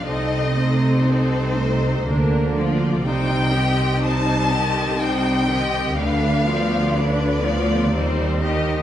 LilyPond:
<<
  \new Staff \with { instrumentName = "Violin section" } { \time 3/4 \key c \dorian \tempo 4 = 61 ees''4 c''4. r8 | g''4 a''4 g''4 | f''4 d''4. r8 | }
  \new Staff \with { instrumentName = "Violin section" } { \time 3/4 \key c \dorian <c' a'>8 <ees' c''>8 <c' a'>8 <ees' c''>8 <d' bes'>8 <f' d''>8 | <ees' c''>8 <g' ees''>8 <ees' c''>8 <g' ees''>8 <ees' c''>8 <g' ees''>8 | <d' b'>8 <f' d''>8 <d' b'>8 <f' d''>8 <ees' c''>8 <g' ees''>8 | }
  \new Staff \with { instrumentName = "Viola section" } { \time 3/4 \key c \dorian <c' ees'>8 <a c'>8 <c' ees'>8 <a c'>8 <bes d'>8 <f bes>8 | <g ees'>8 <ees c'>8 <g ees'>8 <ees c'>8 <g ees'>8 <ees c'>8 | <d d'>8 <f b>8 <d d'>8 <f b>8 <g c'>8 <ees ees'>8 | }
  \new Staff \with { instrumentName = "Cello section" } { \clef bass \time 3/4 \key c \dorian c2 d4 | c2. | d,2 ees,4 | }
  \new Staff \with { instrumentName = "Double bass section" } { \clef bass \time 3/4 \key c \dorian c,2 d,4 | c,2. | d,2 ees,4 | }
>>